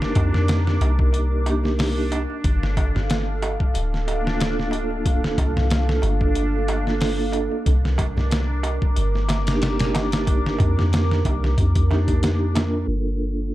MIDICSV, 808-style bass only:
0, 0, Header, 1, 2, 480
1, 0, Start_track
1, 0, Key_signature, -2, "minor"
1, 0, Tempo, 652174
1, 1800, Time_signature, 4, 2, 24, 8
1, 9968, End_track
2, 0, Start_track
2, 0, Title_t, "808-style bass"
2, 0, Program_c, 0, 38
2, 0, Note_on_c, 0, 31, 90
2, 100, Note_off_c, 0, 31, 0
2, 114, Note_on_c, 0, 41, 100
2, 576, Note_off_c, 0, 41, 0
2, 595, Note_on_c, 0, 36, 104
2, 1664, Note_off_c, 0, 36, 0
2, 1799, Note_on_c, 0, 31, 94
2, 2625, Note_off_c, 0, 31, 0
2, 2763, Note_on_c, 0, 26, 86
2, 3941, Note_off_c, 0, 26, 0
2, 3959, Note_on_c, 0, 36, 103
2, 4418, Note_off_c, 0, 36, 0
2, 4437, Note_on_c, 0, 31, 108
2, 5505, Note_off_c, 0, 31, 0
2, 5641, Note_on_c, 0, 36, 97
2, 6466, Note_off_c, 0, 36, 0
2, 6603, Note_on_c, 0, 31, 84
2, 7780, Note_off_c, 0, 31, 0
2, 7800, Note_on_c, 0, 41, 102
2, 8259, Note_off_c, 0, 41, 0
2, 8279, Note_on_c, 0, 36, 107
2, 8515, Note_off_c, 0, 36, 0
2, 8519, Note_on_c, 0, 41, 100
2, 9459, Note_off_c, 0, 41, 0
2, 9477, Note_on_c, 0, 31, 81
2, 9968, Note_off_c, 0, 31, 0
2, 9968, End_track
0, 0, End_of_file